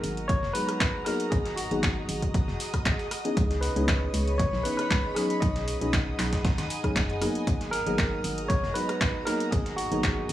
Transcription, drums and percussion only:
0.04 closed hi-hat medium
0.04 open hi-hat loud
0.17 closed hi-hat medium
0.29 kick loud
0.29 closed hi-hat medium
0.43 snare soft
0.55 closed hi-hat medium
0.55 open hi-hat loud
0.69 cross-stick medium
0.69 closed hi-hat soft
0.69 closed hi-hat medium
0.80 kick loud
0.80 snare loud
0.80 clap loud
0.80 closed hi-hat medium
1.06 cross-stick medium
1.06 snare medium
1.06 closed hi-hat medium
1.06 open hi-hat loud
1.20 closed hi-hat soft
1.20 closed hi-hat medium
1.32 kick loud
1.32 closed hi-hat medium
1.45 snare medium
1.45 closed hi-hat soft
1.57 closed hi-hat medium
1.57 open hi-hat loud
1.71 closed hi-hat medium
1.83 kick loud
1.83 snare loud
1.83 clap loud
1.83 closed hi-hat medium
2.09 closed hi-hat medium
2.09 open hi-hat loud
2.22 kick medium
2.22 closed hi-hat medium
2.34 kick loud
2.34 closed hi-hat medium
2.48 snare soft
2.60 snare medium
2.60 closed hi-hat medium
2.60 open hi-hat loud
2.74 kick medium
2.74 cross-stick medium
2.74 closed hi-hat medium
2.74 closed hi-hat soft
2.86 kick loud
2.86 snare soft
2.86 clap loud
2.86 closed hi-hat medium
2.99 snare soft
2.99 closed hi-hat medium
3.11 cross-stick medium
3.11 closed hi-hat medium
3.11 open hi-hat loud
3.25 closed hi-hat medium
3.37 kick loud
3.37 closed hi-hat medium
3.51 snare soft
3.51 closed hi-hat soft
3.63 snare medium
3.63 closed hi-hat medium
3.63 open hi-hat loud
3.76 closed hi-hat soft
3.88 kick loud
3.88 snare loud
3.88 clap loud
3.88 closed hi-hat medium
4.14 closed hi-hat medium
4.14 open hi-hat loud
4.28 closed hi-hat soft
4.39 kick loud
4.39 closed hi-hat medium
4.53 snare soft
4.65 closed hi-hat medium
4.65 open hi-hat loud
4.79 cross-stick medium
4.79 closed hi-hat medium
4.79 closed hi-hat soft
4.91 kick loud
4.91 snare loud
4.91 clap loud
4.91 closed hi-hat medium
5.16 cross-stick medium
5.16 snare soft
5.16 closed hi-hat medium
5.16 open hi-hat loud
5.30 closed hi-hat soft
5.42 kick loud
5.42 closed hi-hat medium
5.56 snare medium
5.56 closed hi-hat soft
5.68 closed hi-hat medium
5.68 open hi-hat loud
5.81 closed hi-hat soft
5.93 kick loud
5.93 snare loud
5.93 clap loud
5.93 closed hi-hat medium
6.19 snare loud
6.19 clap medium
6.19 closed hi-hat medium
6.19 open hi-hat loud
6.33 kick medium
6.33 snare loud
6.33 closed hi-hat medium
6.33 closed hi-hat soft
6.45 kick loud
6.45 snare loud
6.45 closed hi-hat medium
6.58 snare loud
6.58 closed hi-hat medium
6.58 closed hi-hat soft
6.70 closed hi-hat medium
6.70 open hi-hat loud
6.84 kick medium
6.84 cross-stick medium
6.84 closed hi-hat soft
6.96 kick loud
6.96 snare loud
6.96 clap loud
6.96 closed hi-hat medium
7.10 closed hi-hat soft
7.22 cross-stick medium
7.22 closed hi-hat medium
7.22 open hi-hat loud
7.35 closed hi-hat soft
7.47 kick loud
7.47 closed hi-hat medium
7.61 snare soft
7.61 closed hi-hat soft
7.73 snare medium
7.73 closed hi-hat medium
7.73 open hi-hat loud
7.87 closed hi-hat soft
7.98 kick loud
7.98 snare loud
7.98 clap loud
7.98 closed hi-hat medium
8.24 closed hi-hat medium
8.24 open hi-hat loud
8.38 closed hi-hat medium
8.50 kick loud
8.50 closed hi-hat medium
8.63 snare soft
8.75 closed hi-hat medium
8.75 open hi-hat loud
8.89 cross-stick medium
8.89 closed hi-hat soft
9.01 kick loud
9.01 snare loud
9.01 clap loud
9.01 closed hi-hat medium
9.27 cross-stick medium
9.27 snare medium
9.27 closed hi-hat medium
9.27 open hi-hat loud
9.40 closed hi-hat soft
9.52 kick loud
9.52 closed hi-hat medium
9.66 snare medium
9.66 closed hi-hat soft
9.78 closed hi-hat medium
9.78 open hi-hat loud
9.92 closed hi-hat soft
10.04 kick loud
10.04 snare loud
10.04 clap loud
10.04 closed hi-hat medium
10.29 closed hi-hat medium
10.29 open hi-hat loud

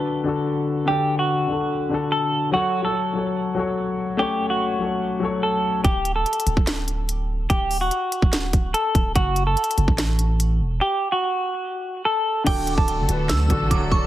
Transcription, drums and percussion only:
5.84 kick loud
5.84 closed hi-hat medium
6.05 closed hi-hat medium
6.26 closed hi-hat medium
6.33 closed hi-hat medium
6.40 closed hi-hat medium
6.47 closed hi-hat medium
6.57 kick medium
6.67 snare loud
6.67 clap medium
6.67 closed hi-hat medium
6.88 closed hi-hat medium
7.09 closed hi-hat medium
7.50 kick loud
7.50 closed hi-hat medium
7.71 open hi-hat medium
7.91 closed hi-hat medium
8.12 closed hi-hat medium
8.22 kick medium
8.33 snare loud
8.33 clap medium
8.33 closed hi-hat medium
8.53 kick loud
8.53 closed hi-hat medium
8.74 closed hi-hat medium
8.95 kick medium
8.95 closed hi-hat medium
9.15 kick loud
9.15 closed hi-hat medium
9.36 closed hi-hat medium
9.57 closed hi-hat medium
9.64 closed hi-hat medium
9.71 closed hi-hat medium
9.78 closed hi-hat medium
9.88 kick medium
9.98 snare loud
9.98 clap medium
9.98 closed hi-hat loud
10.19 closed hi-hat medium
10.40 closed hi-hat medium
12.47 kick loud
12.47 closed hi-hat medium
12.47 crash loud
12.67 closed hi-hat medium
12.78 kick loud
12.88 closed hi-hat medium
13.09 closed hi-hat loud
13.29 snare loud
13.29 clap medium
13.29 closed hi-hat loud
13.50 kick loud
13.50 closed hi-hat medium
13.71 kick medium
13.71 closed hi-hat medium
13.92 kick loud

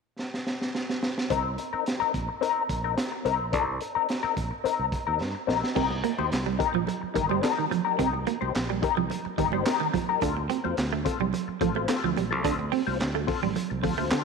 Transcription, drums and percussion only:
0.19 snare soft
0.34 snare medium
0.47 snare medium
0.62 snare medium
0.75 snare medium
0.90 snare medium
1.03 snare loud
1.18 snare medium
1.30 kick loud
1.30 closed hi-hat medium
1.58 closed hi-hat medium
1.86 snare medium
1.86 closed hi-hat medium
2.14 kick medium
2.14 closed hi-hat medium
2.43 closed hi-hat medium
2.69 kick medium
2.69 closed hi-hat medium
2.98 snare loud
2.98 closed hi-hat medium
3.26 closed hi-hat medium
3.53 kick loud
3.53 closed hi-hat medium
3.81 closed hi-hat medium
4.09 snare medium
4.09 closed hi-hat medium
4.37 kick loud
4.37 closed hi-hat medium
4.66 closed hi-hat medium
4.92 kick medium
4.92 closed hi-hat medium
5.21 snare medium
5.49 snare medium
5.64 snare medium
5.76 kick loud
5.76 crash medium
5.76 muted conga soft
5.91 muted conga soft
6.04 closed hi-hat medium
6.04 high conga medium
6.19 high conga medium
6.32 snare medium
6.32 clap medium
6.32 closed hi-hat medium
6.32 muted conga soft
6.46 muted conga soft
6.60 kick loud
6.60 closed hi-hat medium
6.74 low conga medium
6.87 closed hi-hat medium
6.87 muted conga soft
6.87 low conga medium
7.16 kick medium
7.16 closed hi-hat medium
7.29 high conga medium
7.43 snare loud
7.43 clap loud
7.43 closed hi-hat medium
7.43 muted conga soft
7.58 muted conga soft
7.71 closed hi-hat medium
7.71 high conga medium
7.71 low conga medium
7.99 kick loud
7.99 closed hi-hat medium
7.99 muted conga soft
8.14 muted conga soft
8.27 closed hi-hat medium
8.27 high conga medium
8.42 high conga medium
8.55 snare medium
8.55 clap medium
8.55 closed hi-hat medium
8.70 muted conga soft
8.83 kick loud
8.83 closed hi-hat medium
8.97 low conga medium
9.10 closed hi-hat medium
9.10 muted conga soft
9.10 low conga medium
9.25 muted conga soft
9.38 kick loud
9.38 closed hi-hat medium
9.52 high conga medium
9.66 snare loud
9.66 clap loud
9.66 closed hi-hat medium
9.80 muted conga soft
9.94 kick medium
9.94 closed hi-hat medium
9.94 high conga medium
9.94 low conga medium
10.21 kick loud
10.21 closed hi-hat loud
10.21 muted conga soft
10.37 muted conga soft
10.50 closed hi-hat medium
10.50 high conga medium
10.65 high conga medium
10.77 snare medium
10.77 clap medium
10.77 closed hi-hat medium
11.06 kick loud
11.06 closed hi-hat medium
11.20 low conga medium
11.33 closed hi-hat medium
11.33 muted conga soft
11.33 low conga medium
11.61 kick medium
11.61 closed hi-hat medium
11.75 high conga medium
11.89 snare loud
11.89 clap loud
11.89 closed hi-hat medium
11.89 muted conga soft
12.16 closed hi-hat medium
12.16 high conga medium
12.16 low conga medium
12.44 kick loud
12.44 closed hi-hat loud
12.44 muted conga soft
12.59 muted conga soft
12.72 open hi-hat medium
12.72 high conga medium
12.87 high conga medium
13.00 snare medium
13.00 clap medium
13.00 closed hi-hat medium
13.00 muted conga soft
13.15 muted conga soft
13.15 high conga medium
13.28 kick loud
13.28 open hi-hat medium
13.42 low conga medium
13.55 closed hi-hat medium
13.55 muted conga soft
13.55 low conga medium
13.71 muted conga soft
13.84 kick medium
13.84 open hi-hat medium
13.98 high conga loud
14.11 snare loud
14.11 clap loud
14.11 closed hi-hat medium
14.11 muted conga soft

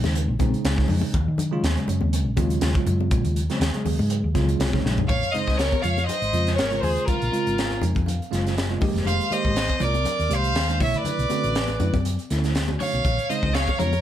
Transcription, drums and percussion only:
0.04 snare soft
0.04 high conga medium
0.15 closed hi-hat medium
0.39 kick medium
0.39 closed hi-hat soft
0.39 high conga medium
0.54 closed hi-hat soft
0.65 snare loud
0.65 closed hi-hat medium
0.78 kick medium
0.78 snare soft
0.88 open hi-hat medium
0.88 low conga medium
1.01 high conga medium
1.14 kick medium
1.14 closed hi-hat medium
1.38 closed hi-hat medium
1.38 low conga medium
1.64 snare medium
1.64 closed hi-hat medium
1.77 closed hi-hat soft
1.88 closed hi-hat medium
1.88 low conga medium
2.01 high conga medium
2.13 closed hi-hat medium
2.37 kick medium
2.37 closed hi-hat medium
2.37 high conga medium
2.50 closed hi-hat soft
2.61 snare loud
2.61 closed hi-hat medium
2.75 kick medium
2.75 closed hi-hat soft
2.86 closed hi-hat medium
2.86 low conga medium
3.00 high conga medium
3.11 kick loud
3.11 closed hi-hat medium
3.25 closed hi-hat soft
3.36 closed hi-hat medium
3.50 snare soft
3.50 closed hi-hat soft
3.61 snare medium
3.61 closed hi-hat medium
3.74 closed hi-hat soft
3.86 open hi-hat medium
3.86 high conga medium
3.86 low conga medium
3.99 high conga medium
4.10 closed hi-hat medium
4.35 kick medium
4.35 snare soft
4.35 closed hi-hat medium
4.35 high conga medium
4.49 closed hi-hat soft
4.60 snare loud
4.60 closed hi-hat medium
4.60 high conga soft
4.73 kick medium
4.73 snare soft
4.73 high conga medium
4.84 snare medium
4.84 low conga medium
4.98 floor tom medium
4.98 low conga medium
5.09 kick medium
5.09 closed hi-hat medium
5.09 low conga medium
5.23 closed hi-hat soft
5.34 closed hi-hat soft
5.48 kick medium
5.48 snare soft
5.59 snare medium
5.59 closed hi-hat medium
5.72 kick medium
5.72 closed hi-hat soft
5.72 high conga medium
5.84 closed hi-hat medium
5.84 high conga medium
5.98 closed hi-hat soft
5.98 high conga medium
6.09 closed hi-hat medium
6.09 low conga medium
6.22 closed hi-hat soft
6.33 closed hi-hat medium
6.47 snare soft
6.47 closed hi-hat soft
6.58 snare loud
6.58 closed hi-hat medium
6.72 closed hi-hat soft
6.83 open hi-hat medium
6.83 low conga medium
6.97 closed hi-hat soft
7.08 kick medium
7.08 closed hi-hat medium
7.08 low conga soft
7.22 closed hi-hat soft
7.34 closed hi-hat soft
7.47 closed hi-hat soft
7.58 snare medium
7.58 closed hi-hat medium
7.70 closed hi-hat soft
7.70 high conga medium
7.82 closed hi-hat medium
7.82 high conga medium
7.82 low conga medium
7.95 kick medium
7.95 closed hi-hat soft
7.95 high conga medium
8.06 closed hi-hat medium
8.06 low conga medium
8.22 closed hi-hat soft
8.33 snare soft
8.33 closed hi-hat soft
8.47 snare soft
8.47 closed hi-hat soft
8.58 snare loud
8.58 closed hi-hat medium
8.81 kick loud
8.81 open hi-hat medium
8.81 low conga medium
8.96 snare soft
8.96 closed hi-hat soft
9.05 closed hi-hat medium
9.05 low conga medium
9.21 closed hi-hat soft
9.32 closed hi-hat soft
9.45 kick medium
9.56 snare medium
9.56 closed hi-hat medium
9.68 kick medium
9.68 closed hi-hat soft
9.68 high conga medium
9.80 closed hi-hat medium
9.80 low conga medium
9.94 closed hi-hat soft
9.94 high conga medium
10.05 closed hi-hat medium
10.05 low conga medium
10.20 closed hi-hat soft
10.31 closed hi-hat medium
10.44 closed hi-hat soft
10.55 snare medium
10.55 closed hi-hat medium
10.69 closed hi-hat soft
10.80 kick medium
10.80 open hi-hat medium
10.80 low conga medium
10.94 closed hi-hat soft
11.05 closed hi-hat medium
11.05 low conga medium
11.19 closed hi-hat soft
11.30 closed hi-hat medium
11.30 high conga medium
11.44 closed hi-hat soft
11.55 snare loud
11.55 closed hi-hat medium
11.68 closed hi-hat soft
11.68 high conga medium
11.80 closed hi-hat medium
11.80 high conga medium
11.80 low conga medium
11.93 kick medium
11.93 closed hi-hat soft
11.93 high conga medium
12.05 closed hi-hat medium
12.19 closed hi-hat soft
12.30 snare soft
12.30 closed hi-hat medium
12.44 snare soft
12.44 closed hi-hat soft
12.55 snare medium
12.55 closed hi-hat medium
12.68 high conga medium
12.80 open hi-hat medium
12.80 low conga medium
12.94 closed hi-hat soft
13.05 kick medium
13.05 closed hi-hat medium
13.05 low conga medium
13.19 closed hi-hat soft
13.30 closed hi-hat medium
13.43 kick medium
13.54 snare medium
13.54 closed hi-hat medium
13.68 kick medium
13.68 closed hi-hat soft
13.68 high conga medium
13.79 closed hi-hat medium
13.79 high conga medium
13.79 low conga medium
13.93 closed hi-hat soft
13.93 high conga medium

